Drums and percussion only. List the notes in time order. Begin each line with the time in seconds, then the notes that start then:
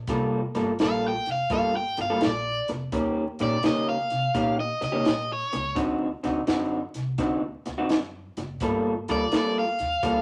0.07 kick, snare, closed hi-hat
0.55 snare, closed hi-hat
0.79 snare, closed hi-hat
1.26 snare, closed hi-hat
1.50 kick, snare, closed hi-hat
1.97 snare, closed hi-hat
2.21 snare, closed hi-hat
2.68 snare, closed hi-hat
2.92 kick, snare, closed hi-hat
3.39 snare, closed hi-hat
3.63 snare, closed hi-hat
4.10 snare, closed hi-hat
4.35 kick, snare, closed hi-hat
4.82 snare, closed hi-hat
5.05 snare, closed hi-hat
5.53 snare, closed hi-hat
5.76 kick, snare, closed hi-hat
6.24 snare, closed hi-hat
6.47 snare, closed hi-hat
6.94 snare, closed hi-hat
7.18 kick, snare, closed hi-hat
7.66 snare, closed hi-hat
7.89 snare, closed hi-hat
8.37 snare, closed hi-hat
8.60 kick, snare, closed hi-hat
9.08 snare, closed hi-hat
9.32 snare, closed hi-hat
9.79 snare, closed hi-hat
10.03 kick, snare, closed hi-hat